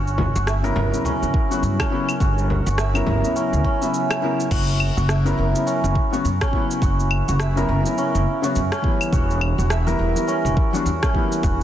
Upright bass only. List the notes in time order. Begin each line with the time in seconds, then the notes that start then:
Already playing: G1
0.36 G1
0.76 G1
1.22 G1
1.63 G2
2.20 G1
2.67 G1
3.07 G1
3.53 D2
4.51 F#1
4.97 F#1
5.38 F#1
5.84 F#1
6.25 F#2
6.82 F#1
7.28 F#1
7.69 F#1
8.15 F#1
8.56 F#2
9.13 E1
9.58 E1
9.99 E1
10.45 E1
10.85 E2
11.43 E1